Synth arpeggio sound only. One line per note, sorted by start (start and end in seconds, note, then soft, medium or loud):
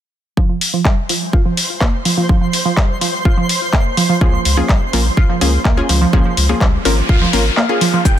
0.37 0.44 F3 loud
0.49 0.56 F3 medium
0.74 0.80 F3 medium
0.85 0.92 G3 medium
1.09 1.14 F3 medium
1.33 1.40 F4 medium
1.45 1.52 F3 medium
1.81 1.88 A#3 medium
2.05 2.10 F3 medium
2.17 2.22 F3 medium
2.29 2.36 F3 loud
2.41 2.48 F3 medium
2.65 2.72 F3 medium
2.77 2.84 G3 medium
3.01 3.06 F3 medium
3.25 3.32 F4 medium
3.37 3.44 F3 medium
3.73 3.80 A#3 medium
3.97 4.02 F3 medium
4.09 4.14 F3 medium
4.21 4.28 F3 loud
4.33 4.40 F3 medium
4.57 4.64 F3 medium
4.69 4.76 G3 medium
4.93 4.98 F3 medium
5.17 5.24 F4 loud
5.29 5.36 F3 medium
5.65 5.72 A#3 medium
5.89 5.94 F3 medium
6.01 6.06 F3 medium
6.13 6.20 F3 loud
6.25 6.32 F3 medium
6.49 6.56 F3 medium
6.61 6.68 G3 medium
6.85 6.90 F3 medium
7.09 7.16 F4 loud
7.21 7.28 F3 medium
7.57 7.64 A#3 medium
7.81 7.86 F3 medium
7.93 7.98 F3 medium
8.05 8.12 F3 loud